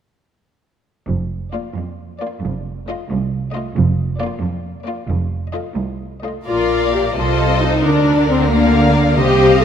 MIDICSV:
0, 0, Header, 1, 6, 480
1, 0, Start_track
1, 0, Key_signature, -2, "major"
1, 0, Tempo, 452148
1, 1150, Time_signature, 6, 3, 24, 8
1, 3065, Tempo, 440529
1, 5465, Tempo, 463320
1, 7385, Tempo, 445765
1, 10296, End_track
2, 0, Start_track
2, 0, Title_t, "Violin section"
2, 0, Program_c, 0, 48
2, 1635, Note_on_c, 0, 74, 27
2, 1813, Note_off_c, 0, 74, 0
2, 2334, Note_on_c, 0, 74, 34
2, 2519, Note_off_c, 0, 74, 0
2, 3058, Note_on_c, 0, 75, 39
2, 3243, Note_off_c, 0, 75, 0
2, 3774, Note_on_c, 0, 75, 40
2, 3957, Note_off_c, 0, 75, 0
2, 4485, Note_on_c, 0, 74, 41
2, 4669, Note_off_c, 0, 74, 0
2, 5199, Note_on_c, 0, 74, 40
2, 5391, Note_off_c, 0, 74, 0
2, 5924, Note_on_c, 0, 75, 35
2, 6104, Note_off_c, 0, 75, 0
2, 6658, Note_on_c, 0, 75, 30
2, 6841, Note_off_c, 0, 75, 0
2, 6899, Note_on_c, 0, 77, 32
2, 7583, Note_off_c, 0, 77, 0
2, 7631, Note_on_c, 0, 75, 36
2, 8344, Note_on_c, 0, 74, 35
2, 8349, Note_off_c, 0, 75, 0
2, 9055, Note_off_c, 0, 74, 0
2, 9072, Note_on_c, 0, 74, 36
2, 9771, Note_off_c, 0, 74, 0
2, 9789, Note_on_c, 0, 77, 42
2, 10296, Note_off_c, 0, 77, 0
2, 10296, End_track
3, 0, Start_track
3, 0, Title_t, "Violin section"
3, 0, Program_c, 1, 48
3, 1636, Note_on_c, 1, 65, 30
3, 1814, Note_off_c, 1, 65, 0
3, 2350, Note_on_c, 1, 65, 32
3, 2528, Note_off_c, 1, 65, 0
3, 3068, Note_on_c, 1, 65, 37
3, 3248, Note_off_c, 1, 65, 0
3, 3784, Note_on_c, 1, 65, 38
3, 3963, Note_off_c, 1, 65, 0
3, 4516, Note_on_c, 1, 65, 43
3, 4686, Note_off_c, 1, 65, 0
3, 5226, Note_on_c, 1, 65, 37
3, 5405, Note_off_c, 1, 65, 0
3, 5932, Note_on_c, 1, 65, 39
3, 6108, Note_off_c, 1, 65, 0
3, 6658, Note_on_c, 1, 65, 27
3, 6841, Note_off_c, 1, 65, 0
3, 6890, Note_on_c, 1, 70, 31
3, 6893, Note_on_c, 1, 74, 33
3, 7579, Note_off_c, 1, 70, 0
3, 7580, Note_off_c, 1, 74, 0
3, 7625, Note_on_c, 1, 72, 35
3, 7628, Note_on_c, 1, 69, 35
3, 8343, Note_on_c, 1, 70, 35
3, 8346, Note_off_c, 1, 72, 0
3, 8347, Note_off_c, 1, 69, 0
3, 9068, Note_on_c, 1, 77, 37
3, 9753, Note_off_c, 1, 70, 0
3, 9783, Note_off_c, 1, 77, 0
3, 9784, Note_on_c, 1, 75, 37
3, 9785, Note_on_c, 1, 72, 37
3, 10296, Note_off_c, 1, 72, 0
3, 10296, Note_off_c, 1, 75, 0
3, 10296, End_track
4, 0, Start_track
4, 0, Title_t, "Viola section"
4, 0, Program_c, 2, 48
4, 1630, Note_on_c, 2, 58, 28
4, 1811, Note_off_c, 2, 58, 0
4, 2345, Note_on_c, 2, 58, 33
4, 2525, Note_off_c, 2, 58, 0
4, 3063, Note_on_c, 2, 57, 35
4, 3246, Note_off_c, 2, 57, 0
4, 3781, Note_on_c, 2, 57, 38
4, 3961, Note_off_c, 2, 57, 0
4, 4504, Note_on_c, 2, 58, 40
4, 4680, Note_off_c, 2, 58, 0
4, 5219, Note_on_c, 2, 58, 38
4, 5401, Note_off_c, 2, 58, 0
4, 5932, Note_on_c, 2, 57, 34
4, 6108, Note_off_c, 2, 57, 0
4, 6657, Note_on_c, 2, 57, 29
4, 6840, Note_off_c, 2, 57, 0
4, 6902, Note_on_c, 2, 65, 47
4, 7350, Note_off_c, 2, 65, 0
4, 7378, Note_on_c, 2, 67, 48
4, 7464, Note_off_c, 2, 67, 0
4, 7623, Note_on_c, 2, 65, 44
4, 8094, Note_off_c, 2, 65, 0
4, 8113, Note_on_c, 2, 63, 47
4, 8351, Note_off_c, 2, 63, 0
4, 8363, Note_on_c, 2, 62, 52
4, 8839, Note_off_c, 2, 62, 0
4, 8855, Note_on_c, 2, 60, 48
4, 9079, Note_off_c, 2, 60, 0
4, 9084, Note_on_c, 2, 58, 49
4, 9776, Note_off_c, 2, 58, 0
4, 9790, Note_on_c, 2, 67, 63
4, 10256, Note_off_c, 2, 67, 0
4, 10296, End_track
5, 0, Start_track
5, 0, Title_t, "Cello section"
5, 0, Program_c, 3, 48
5, 1145, Note_on_c, 3, 41, 36
5, 1721, Note_off_c, 3, 41, 0
5, 1863, Note_on_c, 3, 41, 32
5, 2434, Note_off_c, 3, 41, 0
5, 2581, Note_on_c, 3, 41, 42
5, 3152, Note_off_c, 3, 41, 0
5, 3304, Note_on_c, 3, 36, 43
5, 3872, Note_off_c, 3, 36, 0
5, 4012, Note_on_c, 3, 41, 49
5, 4584, Note_off_c, 3, 41, 0
5, 4731, Note_on_c, 3, 41, 46
5, 5306, Note_off_c, 3, 41, 0
5, 5456, Note_on_c, 3, 41, 51
5, 6016, Note_off_c, 3, 41, 0
5, 6162, Note_on_c, 3, 36, 41
5, 6748, Note_off_c, 3, 36, 0
5, 6897, Note_on_c, 3, 46, 36
5, 7582, Note_off_c, 3, 46, 0
5, 7623, Note_on_c, 3, 48, 33
5, 8343, Note_on_c, 3, 50, 40
5, 8345, Note_off_c, 3, 48, 0
5, 9782, Note_off_c, 3, 50, 0
5, 9785, Note_on_c, 3, 48, 44
5, 10296, Note_off_c, 3, 48, 0
5, 10296, End_track
6, 0, Start_track
6, 0, Title_t, "Double bass section"
6, 0, Program_c, 4, 48
6, 1149, Note_on_c, 4, 29, 34
6, 1598, Note_off_c, 4, 29, 0
6, 2576, Note_on_c, 4, 29, 39
6, 3025, Note_off_c, 4, 29, 0
6, 4022, Note_on_c, 4, 29, 52
6, 4469, Note_off_c, 4, 29, 0
6, 5462, Note_on_c, 4, 29, 49
6, 5897, Note_off_c, 4, 29, 0
6, 6899, Note_on_c, 4, 34, 35
6, 7583, Note_off_c, 4, 34, 0
6, 7631, Note_on_c, 4, 36, 35
6, 8345, Note_on_c, 4, 38, 39
6, 8349, Note_off_c, 4, 36, 0
6, 9783, Note_off_c, 4, 38, 0
6, 9784, Note_on_c, 4, 36, 43
6, 10296, Note_off_c, 4, 36, 0
6, 10296, End_track
0, 0, End_of_file